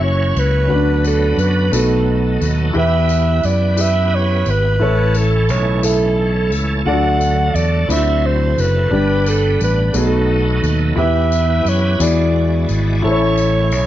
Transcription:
Already playing: F#1 F#3 A#3 C#4 E4 F#4 C#5
0.04 C#5
0.36 C#2 B4, tambourine
0.67 D2 D3 F#3 B3 C#4 D4 F#4 B4
0.74 D4
1.04 A4, tambourine
1.37 F#2 B4, tambourine
1.72 B1 B2 F#3 A3 B3 D4 D#4 F#4 A4 B4, tambourine
1.79 D#4
2.41 D#2, tambourine
2.73 E2 E3 B3 E4 G4 B4
2.79 E5
3.09 tambourine
3.43 F#2 D5, tambourine
3.77 E4 G4 B4, tambourine
3.81 E5
4.15 C#5
4.46 G#1, tambourine
4.50 B4
4.80 A1 A2 E3 A3 C#4 E4 A4 C#5
5.14 A4, tambourine
5.49 B1 C#5, tambourine
5.83 E4 A4 E5, tambourine
6.52 C#2, tambourine
6.85 D2 D3 F#3 A3 D4 F4 A4 D5 F#5
6.91 F#4
7.21 tambourine
7.54 E2 D5, tambourine
7.87 D2 D3 F#3 C4 E4 F4 A4 D5 B5, tambourine
7.92 F#4 E5
8.26 C5
8.58 F#1 B4, tambourine
8.91 G1 G2 G3 B3 D4 G4 B4
9.26 A4, tambourine
9.60 A1 B4, tambourine
9.93 B1 B2 F#3 A3 B3 D#4 F#4 G4 A4 B4, tambourine
10.01 A4
10.63 D#2, tambourine
10.96 E2 E3 B3 E4 G4 B4 E5
11.32 tambourine
11.65 F#2, tambourine
11.69 C#5
11.99 E2 E3 G#3 B3 E4 F#4 G#4 D5, tambourine
12.03 D5
12.69 G#1, tambourine
13.02 A1 A2 A3 C#4 E4 A4 C5 C#5
13.12 C#5
13.37 tambourine
13.72 B1, tambourine

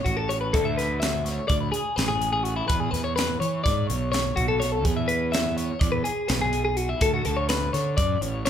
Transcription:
0.05 A1 F#4, kick, closed hi-hat
0.17 A4
0.29 C#5, closed hi-hat
0.41 B4
0.53 D2 A4, kick, closed hi-hat
0.65 E5
0.77 B4, snare, closed hi-hat
1.00 E5, snare, closed hi-hat
1.25 C#5, snare, closed hi-hat
1.48 D2 D5, kick, closed hi-hat
1.61 B4
1.72 G#4, closed hi-hat
1.96 A1 B4, snare, closed hi-hat
2.08 G#4
2.22 closed hi-hat
2.33 G#4
2.44 F#4, closed hi-hat
2.56 E4
2.68 E2 B4, kick, closed hi-hat
2.80 G#4
2.91 E2 B4, closed hi-hat
2.95 snare
3.04 C#5
3.16 B4, snare, closed hi-hat
3.40 E3 C#5, closed hi-hat
3.64 G#2 D5, kick, snare, closed hi-hat
3.87 B1 C#5, closed hi-hat
4.12 C#5, snare, closed hi-hat
4.36 B1 F#4, kick, closed hi-hat
4.48 A4
4.60 C#5, snare, closed hi-hat
4.72 A4
4.84 E2 G#4, kick, closed hi-hat
4.97 E5
5.08 B4, closed hi-hat
5.32 E5, snare, closed hi-hat
5.57 C#5, closed hi-hat
5.79 E2 D5, kick, closed hi-hat
5.92 B4
6.04 G#4, closed hi-hat
6.28 B1 B4, snare, closed hi-hat
6.41 G#4
6.53 closed hi-hat
6.65 G#4
6.77 F#4, closed hi-hat
6.89 E4
7.01 D2 A4, kick, closed hi-hat
7.14 F#4
7.25 D2 A4, closed hi-hat
7.37 C#5
7.49 B4, snare, closed hi-hat
7.73 D3 C#5, snare, closed hi-hat
7.97 F#2 D5, kick, closed hi-hat
8.21 A1 C#5, closed hi-hat
8.45 C#5, closed hi-hat

